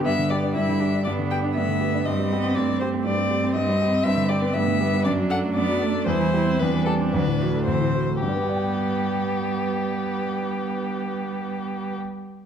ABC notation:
X:1
M:4/4
L:1/16
Q:1/4=116
K:G
V:1 name="Violin"
e2 d2 e4 d2 g2 e4 | _e4 d2 c2 d4 e4 | e2 d2 e4 d2 f2 d4 | c4 B2 A2 B4 c4 |
G16- | G16 |]
V:2 name="Viola"
B,4 E2 D2 D4 B,4 | C8 C8- | C4 B,4 D4 D4 | E2 E2 D8 C2 z2 |
B,16- | B,16 |]
V:3 name="Grand piano"
G,, D, G D G,, D, G D G,, D, G D G,, D, G D | G,, G, G C G,, G, G C G,, G, G C G,, G, G C | G,, D, G B, G,, D, G B, F,, F, A A, F,, F, A A, | E,, E, G C E,, E, G C D,, A,, F A, D,, A,, F A, |
[G,,G,B,Gdg]16- | [G,,G,B,Gdg]16 |]
V:4 name="Cello" clef=bass
G,8 B,4 A,4 | G,2 B,2 A,8 G,4 | G,4 A,2 G,2 F,4 B,2 A,2 | G,4 G,4 F,2 E,2 E,2 z2 |
G,16- | G,16 |]